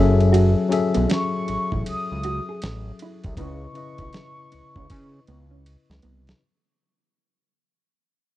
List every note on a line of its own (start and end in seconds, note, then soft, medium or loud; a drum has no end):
0.00 0.56 F#1 loud
0.00 0.59 F#3 loud
0.00 0.13 C#4 medium
0.00 0.59 C#4 medium
0.00 0.60 G#4 medium
0.00 0.61 A4 medium
0.00 0.61 E5 loud
0.20 ride soft
0.33 0.50 F#4 medium
0.33 ride medium
0.69 1.85 F#3 medium
0.69 1.85 C#4 medium
0.69 1.86 G#4 medium
0.69 1.86 A4 medium
0.69 muted clean electric guitar stroke soft
0.69 ride medium
0.73 1.87 E5 medium
0.94 1.07 B1 medium
0.94 1.05 B3 medium
0.94 ride soft
1.08 1.26 C#4 medium
1.08 1.82 C#6 loud
1.08 snare loud
1.08 ride medium
1.48 1.58 A1 soft
1.48 muted clean electric guitar stroke soft
1.48 ride medium
1.72 1.83 A1 loud
1.72 1.82 E4 medium
1.72 kick loud
1.86 1.96 C#2 soft
1.86 2.96 D#6 loud
1.86 muted clean electric guitar stroke medium
1.86 ride medium
2.12 2.40 C#2 medium
2.23 2.42 F#4 medium
2.23 ride medium
2.49 2.58 G#4 medium
2.62 2.92 A1 medium
2.62 snare loud
2.62 ride medium
2.99 3.19 E4 medium
2.99 ride medium
3.24 3.36 C2 loud
3.24 kick loud
3.24 ride soft
3.36 3.67 C#2 loud
3.36 3.67 C#3 medium
3.36 3.68 C#4 medium
3.36 3.56 C#4 loud
3.36 3.68 E4 medium
3.36 3.69 B4 medium
3.36 6.00 C#6 loud
3.36 kick loud
3.36 ride medium
3.40 3.69 D#5 medium
3.73 4.88 C#3 medium
3.73 4.89 C#4 medium
3.73 4.90 E4 medium
3.73 4.90 B4 medium
3.73 ride medium
3.78 4.91 D#5 medium
3.78 muted clean electric guitar stroke soft
3.98 4.10 B1 medium
3.98 4.11 E4 medium
3.98 kick loud
3.98 ride soft
4.13 4.32 E4 medium
4.13 snare loud
4.13 ride medium
4.52 4.63 C#2 medium
4.52 muted clean electric guitar stroke soft
4.52 ride medium
4.76 4.87 C#2 medium
4.76 4.86 C#4 medium
4.76 kick loud
4.90 5.20 C#3 loud
4.90 muted clean electric guitar stroke soft
4.90 kick loud
4.90 ride medium
5.27 5.76 C#2 medium
5.27 5.45 B3 medium
5.27 ride medium
5.51 5.61 C#4 medium
5.66 ride medium
5.90 6.00 C#2 loud
5.90 snare medium
6.02 6.34 C2 loud
6.02 6.21 B3 medium
6.02 ride medium
6.27 snare loud
6.27 ride soft